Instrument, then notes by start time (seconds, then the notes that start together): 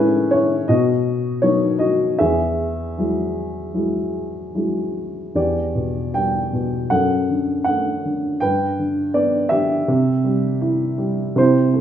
upright piano
Already playing: A2 G#3 A3 C#4 E4 B4 C#5
0.31 E4 C#5
0.68 B2 F#4 D#5
1.42 F#3 B3 D#4 F#4 C#5
1.79 F#4 D#5
2.19 E2 G#4 E5
2.98 F#3 G#3 E4
3.74 F#3 G#3 E4
4.55 F#3 G#3 E4
5.35 E2 G4 D5
5.75 B2
6.14 G3 G5
6.53 B2
6.90 F#2 A4 F#5
7.30 D3
7.64 A3 F#5
8.05 D3
8.40 G2 B4 G5
8.79 D3
9.14 B3 D5
9.49 D3 G4 E5
9.88 C3
10.24 G3
10.61 E4
10.98 G3
11.36 C3 E4 C5
11.73 A3